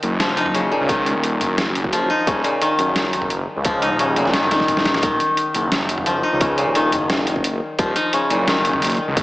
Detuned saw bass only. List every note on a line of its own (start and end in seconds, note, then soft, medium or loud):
0.03 0.71 F#1 medium
0.81 1.14 C#2 medium
1.15 1.40 D#1 loud
1.41 2.09 F#1 medium
2.27 2.43 D#1 loud
2.79 3.47 F#1 medium
3.56 3.90 C#2 medium
3.91 4.16 D#1 medium
4.17 4.51 F#1 medium
4.51 5.02 D#1 medium
5.03 5.19 D#1 medium
5.55 6.23 F#1 medium
6.33 6.66 C#2 medium
6.67 6.92 D#1 medium
6.93 7.61 F#1 medium
7.79 7.95 D#1 loud
8.30 8.98 F#1 loud
9.08 9.23 C#2 medium